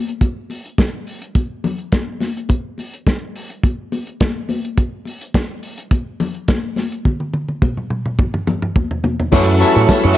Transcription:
0.08 closed hi-hat soft
0.21 kick medium
0.21 closed hi-hat medium
0.21 muted conga medium
0.50 open hi-hat medium
0.50 muted conga soft
0.65 closed hi-hat soft
0.78 kick loud
0.78 snare medium
0.78 closed hi-hat medium
0.78 high conga medium
1.07 open hi-hat medium
1.22 closed hi-hat medium
1.35 kick loud
1.35 closed hi-hat medium
1.35 muted conga soft
1.64 open hi-hat soft
1.64 muted conga soft
1.64 low conga medium
1.79 closed hi-hat soft
1.92 kick medium
1.92 snare medium
1.92 closed hi-hat medium
1.92 high conga medium
2.20 snare soft
2.20 open hi-hat medium
2.20 high conga medium
2.37 closed hi-hat soft
2.49 kick loud
2.49 closed hi-hat medium
2.49 muted conga medium
2.78 open hi-hat medium
2.78 muted conga soft
2.94 closed hi-hat soft
3.07 kick loud
3.07 snare medium
3.07 closed hi-hat medium
3.07 high conga medium
3.36 open hi-hat medium
3.50 closed hi-hat soft
3.64 kick loud
3.64 closed hi-hat medium
3.64 muted conga medium
3.92 open hi-hat soft
3.92 muted conga soft
4.07 closed hi-hat soft
4.20 kick loud
4.20 snare loud
4.20 closed hi-hat medium
4.20 high conga medium
4.49 open hi-hat medium
4.49 high conga medium
4.65 closed hi-hat soft
4.77 kick medium
4.77 closed hi-hat medium
4.77 muted conga medium
5.05 open hi-hat medium
5.05 muted conga soft
5.21 closed hi-hat medium
5.34 kick loud
5.34 snare loud
5.34 closed hi-hat medium
5.34 high conga medium
5.63 open hi-hat medium
5.78 closed hi-hat medium
5.91 kick loud
5.91 closed hi-hat medium
5.91 muted conga medium
6.20 open hi-hat soft
6.20 muted conga soft
6.20 low conga medium
6.35 closed hi-hat soft
6.48 kick loud
6.48 snare medium
6.48 closed hi-hat medium
6.48 high conga medium
6.76 snare soft
6.76 open hi-hat medium
6.76 high conga medium
6.92 closed hi-hat soft
7.05 kick medium
7.05 high tom medium
7.05 muted conga medium
7.20 high tom soft
7.34 high tom medium
7.49 high tom soft
7.62 kick loud
7.62 mid tom medium
7.62 high conga medium
7.77 mid tom medium
7.90 mid tom medium
8.06 mid tom medium
8.19 kick loud
8.19 mid tom medium
8.19 muted conga medium
8.34 mid tom medium
8.47 mid tom medium
8.47 muted conga soft
8.47 low conga medium
8.62 mid tom medium
8.76 kick loud
8.76 floor tom medium
8.76 high conga medium
8.91 floor tom medium
9.04 floor tom loud
9.04 high conga medium
9.20 floor tom medium
9.32 9.63 F#2 loud
9.32 10.18 E3 medium
9.32 9.54 F#3 loud
9.32 10.18 F#3 medium
9.32 10.18 A3 medium
9.32 9.55 C#4 medium
9.32 9.48 C#4 medium
9.32 10.18 E4 medium
9.32 9.55 E4 medium
9.32 9.47 E4 medium
9.32 10.18 F#4 medium
9.32 9.55 A4 loud
9.32 9.46 A4 medium
9.32 9.46 C#5 medium
9.32 kick loud
9.32 crash loud
9.32 tambourine medium
9.32 muted conga medium
9.47 muted clean electric guitar stroke medium
9.60 10.18 F#3 medium
9.60 9.73 C#4 medium
9.60 10.18 C#4 medium
9.60 10.18 E4 medium
9.60 9.68 G4 medium
9.60 9.73 A4 medium
9.60 9.73 E5 loud
9.60 muted clean electric guitar stroke soft
9.60 open hi-hat medium
9.60 tambourine medium
9.68 10.18 A4 medium
9.75 9.85 A2 loud
9.75 9.87 C#4 medium
9.75 9.87 E4 medium
9.75 9.87 A4 medium
9.75 9.87 C#5 medium
9.75 closed hi-hat medium
9.88 10.01 C#4 medium
9.88 10.01 A4 medium
9.88 10.01 E5 medium
9.88 muted clean electric guitar stroke soft
9.88 kick loud
9.88 snare loud
9.88 closed hi-hat medium
9.88 tambourine loud
9.88 high conga medium
10.04 10.13 F#2 loud
10.04 10.16 C#4 medium
10.04 10.17 E4 medium
10.04 10.17 A4 medium
10.04 10.18 C#5 medium

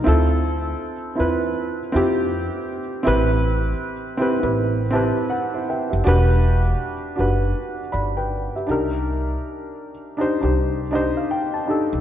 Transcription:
0.04 0.72 D2 loud
0.04 0.91 C4 medium
0.04 0.92 E4 medium
0.04 0.93 F4 medium
0.08 0.93 A4 loud
1.15 1.52 E2 medium
1.15 1.78 C4 medium
1.15 1.78 E4 medium
1.15 1.79 F4 medium
1.20 1.80 B4 medium
1.92 2.48 F2 medium
1.92 2.79 C4 loud
1.92 2.80 E4 medium
1.92 2.81 F4 medium
1.92 2.81 G4 loud
3.03 3.72 A1 loud
3.03 3.91 C4 loud
3.03 3.92 E4 medium
3.03 3.92 G4 medium
3.07 3.93 B4 loud
4.17 4.35 C4 loud
4.17 4.36 E4 medium
4.17 4.37 G4 medium
4.22 4.38 B4 medium
4.40 5.08 A1 medium
4.40 4.82 C4 medium
4.40 4.82 E4 medium
4.40 4.83 G4 medium
4.44 4.84 B4 medium
4.91 5.53 C4 loud
4.91 5.30 E4 medium
4.91 5.31 G4 medium
4.91 5.28 A5 medium
4.95 5.32 B4 medium
5.30 5.65 F#5 medium
5.54 5.68 E4 medium
5.54 5.67 C5 medium
5.69 5.92 B4 medium
5.69 5.89 E5 medium
5.69 5.91 G5 medium
5.90 6.04 F#1 medium
5.90 6.05 G4 soft
5.90 6.26 E5 medium
6.04 6.72 E1 loud
6.04 6.91 D4 loud
6.04 6.92 F#4 medium
6.04 6.93 G4 loud
6.08 6.93 B4 loud
7.16 7.52 F#1 medium
7.16 7.78 D4 medium
7.16 7.79 F#4 medium
7.16 7.79 G4 medium
7.20 7.80 B4 medium
7.92 8.47 G1 medium
7.92 8.15 D5 medium
7.92 8.15 B5 medium
8.17 8.53 B4 medium
8.17 8.52 G5 medium
8.56 8.68 G4 soft
8.56 8.91 E5 medium
8.67 9.35 C2 medium
8.67 9.89 D4 medium
8.67 9.90 D#4 medium
8.67 9.91 G4 medium
8.71 9.92 A#4 medium
10.17 10.35 D4 medium
10.17 10.36 D#4 medium
10.17 10.37 G4 medium
10.21 10.37 C5 medium
10.40 11.08 C2 medium
10.40 10.82 D4 medium
10.40 10.83 D#4 medium
10.40 10.83 G4 medium
10.45 10.84 C5 medium
10.91 11.53 D4 medium
10.91 11.54 D#4 medium
10.91 11.54 G4 medium
10.91 11.15 D#5 medium
10.95 11.55 C5 medium
11.17 11.30 F5 medium
11.31 11.53 G5 medium
11.54 12.01 A5 medium
11.66 11.97 D4 medium
11.66 11.98 D#4 medium
11.66 11.99 G4 medium
11.70 12.00 A4 medium
11.93 12.01 C2 medium

